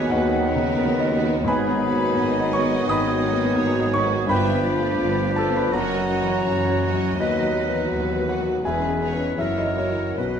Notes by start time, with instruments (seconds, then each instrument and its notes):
Already playing: grand piano D#2 A#3 B3 G#4 A#4 D#5 G#5 A#5, bassoon F#3, viola section B3 D#4, clarinet D#4, violin section F#4 B4, oboe B4, flute G#5
0.08 double bass section D#2, cello section D#2, grand piano D#2 F#4 D#5 F#5, french horn section B3 F#4, violin section B4, flute F#5
0.34 grand piano D#3
0.44 viola section B3 D#4, violin section F#4 A#4 B4
0.55 grand piano C#3
0.79 double bass section D#2, cello section D#2, grand piano B3
1.00 grand piano D#5
1.13 viola section B3 D#4, violin section F#4 B4
1.25 grand piano B3
1.44 grand piano G#2 G#5 B5, bassoon F#3, french horn section B3, clarinet D#4, violin section G#4
1.48 double bass section G#1, cello section G#2, french horn section F#4, oboe G#4, grand piano B4, flute B5
1.68 grand piano B3
1.82 viola section B3 D#4, violin section F#4 B4
1.94 grand piano A#3
2.15 double bass section G#1, grand piano B3, violin section D#5
2.19 cello section G#2
2.40 grand piano D#5
2.53 viola section B3 D#4, violin section F#4 B4, grand piano C#5 C#6, flute C#6
2.62 grand piano B3
2.87 double bass section G#1, cello section G#2, grand piano D#3 B5 D#6, bassoon F#3, french horn section B3 F#4, clarinet D#4, oboe G#4, flute D#6
2.91 grand piano D#5
3.08 grand piano B3
3.22 viola section B3 D#4, violin section F#4 B4
3.33 grand piano A#3
3.56 double bass section G#1, cello section G#2, grand piano B3, violin section C#5
3.80 grand piano D#5
3.92 viola section B3 D#4, violin section F#4 B4, grand piano C#5 C#6, flute C#6
4.04 grand piano B3
4.26 double bass section G1, grand piano G2 B5, cello section G2, bassoon F3, viola section B3 D4, clarinet D4, french horn section D4 F4, violin section F4 B4 E5, flute B5
4.30 oboe G4, grand piano B4 G5
4.53 grand piano B3
4.64 viola section B3 D4, violin section F4 B4 D5
4.77 grand piano A3
4.99 double bass section G1, cello section G2, grand piano B3
5.26 grand piano B4
5.36 viola section B3 D4, violin section F4 B4, grand piano A4 A5, flute A5
5.49 grand piano B3
5.55 grand piano B4 B5, flute B5
5.71 double bass section F#1, grand piano F#2 F#5 A#5, cello section F#2, bassoon F#3, viola section F#3 C#4, clarinet C#4, french horn section C#4 F#4, oboe F#4, violin section D#5, flute A#5
5.75 violin section F#4 C#5, grand piano A#4
5.97 grand piano F#3
6.09 viola section F#3 C#4, violin section F#4 C#5
6.20 grand piano E3
6.46 double bass section F#1, cello section F#2, grand piano F#3, violin section C#5
6.70 grand piano C#5
6.82 viola section F#3 C#4, violin section F#4 C#5 D#5
6.94 grand piano F#3
7.15 grand piano D#2, double bass section D#2, cello section D#2, bassoon F#3, viola section F#3 D#4, french horn section B3 F#4, violin section F#4 B4
7.20 clarinet D#4, grand piano D#4 B4 D#5, oboe B4, flute D#5
7.41 grand piano F#3
7.53 viola section F#3 D#4, violin section F#4 B4
7.68 grand piano E3
7.91 cello section D#2, double bass section D#2, grand piano F#3, violin section B4
8.16 grand piano B4
8.26 viola section F#3 D#4, violin section F#4 B4, flute F#5, grand piano F#5
8.31 grand piano F#4
8.43 grand piano F#3
8.63 double bass section E1, cello section E2, grand piano E2 G#4 E5 G#5, viola section E3 C#4, bassoon G#3, french horn section B3 C#4, clarinet C#4, violin section G#4 B4, oboe B4, flute G#5
8.89 grand piano G#3
9.01 viola section E3 C#4, clarinet D#4, violin section G#4 B4 C#5
9.14 grand piano C#4 B4
9.36 double bass section F#1, grand piano F#2 E4 E5, cello section F#2, viola section E3 C#4, bassoon F#3, french horn section A#3 E4, clarinet E4, violin section F#4 A#4 C#5, flute E5
9.41 oboe A#4
9.58 grand piano D#4 D#5, flute D#5
9.64 grand piano F#3
9.77 viola section E3 C#4, grand piano C#4 C#5, violin section F#4 A#4, flute C#5
9.92 grand piano E4 A#4
10.16 grand piano B1 B3 F#4 B4, double bass section B1, bassoon F#3, french horn section B3 D#4, clarinet D#4, oboe B4, flute B4
10.20 cello section B2, violin section D#5